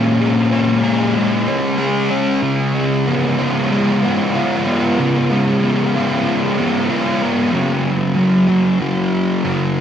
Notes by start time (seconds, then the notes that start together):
Already playing: A#2 G#3 C#4 G#4
0.21 G#3
0.52 C#4
0.84 G#4
1.16 G#3
1.48 C#4
1.79 G#4
2.11 C#4
2.42 C#3
2.74 G#3
3.07 B3
3.38 F4
3.71 G#3
4.03 B3
4.35 F4
4.67 B3
4.99 C#3
5.30 G#3
5.63 B3
5.95 F4
6.27 G#3
6.58 B3
6.90 F4
7.21 B3
7.52 F#2 C#3 F#3
8.15 F#2 C#3 F#3
8.48 C#3 F#3
8.79 F#2 C#3 F#3
9.43 F#2 C#3 F#3